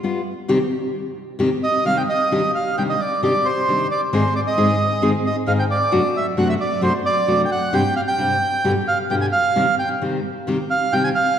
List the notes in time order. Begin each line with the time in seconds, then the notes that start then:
0.03 G3 B3 F4
0.48 C3 D#3 G3 C4 G4
1.39 C3 D#3 G3 C4 G4
1.63 D#5
1.85 C3 D#3 G3 C4 G4 F5
1.97 G5
2.09 D#5
2.31 C3 D#3 G3 D4 G4
2.55 F5
2.77 C3 D#3 G3 D4 G4 G5
2.89 D#5
3.00 D5
3.22 C3 D#3 G3 D4 G4 D5
3.45 C5
3.68 C3 D#3 G3 D4 G4
3.91 D5
4.13 G#2 D#3 G#3 C4 D#4 G#4 C5
4.36 D5
4.47 D#5
4.57 G#2 D#3 G#3 C4 D#4 G#4
5.02 G#2 D#3 G#3 C4 D#4 G#4
5.26 D#5
5.46 G#2 D#3 G#3 C4 D#4 G#4 F5
5.59 G5
5.71 D5
5.91 F#2 C3 F#3 A3 D4 F#4
6.17 E5
6.37 F#2 C3 F#3 A3 D4 F#4 F#5
6.49 E5
6.61 D5
6.81 F#2 C3 F#3 A3 D4 F#4 C5
7.06 D5
7.27 F#2 C3 F#3 A3 D4 F#4
7.45 G5
7.52 F#5
7.73 G2 C3 G3 C4 D4 G4 G5
7.96 F5
8.08 G5
8.18 G2 C3 G3 C4 D4 G4
8.64 G2 B2 D3 G3 B3 G4
8.88 F5
9.10 G2 B2 D3 G3 B3 G4 G5
9.21 G#5
9.32 F5
9.55 C3 D#3 G3 C4 G4
9.79 G5
10.02 C3 D#3 G3 C4 G4
10.47 C3 D#3 G3 C4 G4
10.70 F5
10.93 C3 D#3 G3 C4 G4 G5
11.04 G#5
11.15 F5